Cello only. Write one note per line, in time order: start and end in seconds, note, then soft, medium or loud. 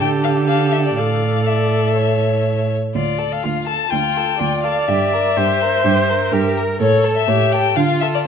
0.00 0.97 D3 soft
0.98 2.71 A2 soft
2.96 3.36 D2 soft
3.45 3.85 D2 soft
3.93 4.33 D2 soft
4.41 4.81 D2 soft
4.88 5.29 G2 medium
5.37 5.77 G2 soft
5.84 6.25 G2 medium
6.32 6.72 G2 medium
6.80 7.21 A2 medium
7.28 7.69 A2 medium
7.76 8.18 D3 medium